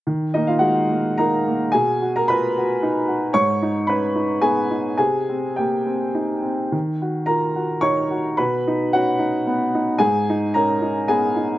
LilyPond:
\new Staff \with { instrumentName = "Upright piano" } { \time 3/4 \key ees \minor \tempo 4 = 109 << { r8 <ees' ees''>16 <f' f''>16 <ges' ges''>4 <bes' bes''>4 | <aes' aes''>8. <bes' bes''>16 <b' b''>2 | <des'' des'''>4 <ces'' ces'''>4 <aes' aes''>4 | <aes' aes''>4 <g' g''>4. r8 |
r4 <bes' bes''>4 <des'' des'''>4 | <b' b''>4 <fis' fis''>2 | <aes' aes''>4 <bes' bes''>4 <aes' aes''>4 | } \\ { ees8 bes8 aes8 bes8 ees'8 bes8 | b,8 fis'8 f'8 fis'8 dis'8 fis'8 | aes,8 ees'8 des'8 ees'8 ces'8 ees'8 | c8 c'8 bes8 c'8 ees'8 c'8 |
ees8 ges'8 f'8 ges'8 ees'8 ges'8 | b,8 dis'8 des'8 dis'8 b8 dis'8 | aes,8 ees'8 des'8 ees'8 ces'8 ees'8 | } >> }